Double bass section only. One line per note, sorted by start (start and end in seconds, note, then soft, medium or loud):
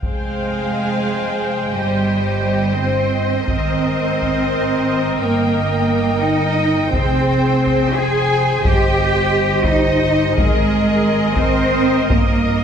0.02 1.71 F1 soft
1.76 3.49 G1 soft
3.49 5.18 G#1 soft
5.22 6.90 G1 soft
6.92 8.62 F1 medium
8.65 10.34 G1 medium
10.37 12.06 G#1 medium
12.11 12.64 G1 medium